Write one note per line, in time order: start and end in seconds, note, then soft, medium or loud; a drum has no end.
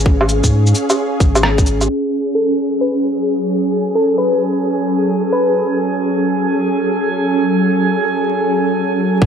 0.00 0.42 G#1 medium
0.00 9.26 C#4 medium
0.00 9.26 G#4 medium
0.00 2.77 C#5 medium
0.00 1.89 F5 medium
0.06 kick loud
0.21 low woodblock medium
0.29 cabasa medium
0.44 0.74 G#2 medium
0.44 kick medium
0.44 shaker medium
0.67 shaker soft
0.75 cabasa medium
0.90 low woodblock medium
0.90 shaker medium
1.20 1.65 G#1 loud
1.20 kick loud
1.20 cabasa medium
1.20 shaker soft
1.35 low woodblock medium
1.35 shaker medium
1.43 cross-stick loud
1.58 kick loud
1.58 shaker soft
1.66 1.88 G#1 loud
1.66 cabasa medium
1.81 low woodblock soft
1.81 shaker medium
1.89 9.26 F#3 medium
1.89 9.21 G#5 medium
2.35 2.59 A4 medium
2.56 9.26 A4 medium
2.81 3.05 B4 medium
3.95 4.17 A4 medium
4.18 4.42 B4 medium
5.33 5.78 B4 medium
9.22 9.26 F#1 loud
9.22 kick loud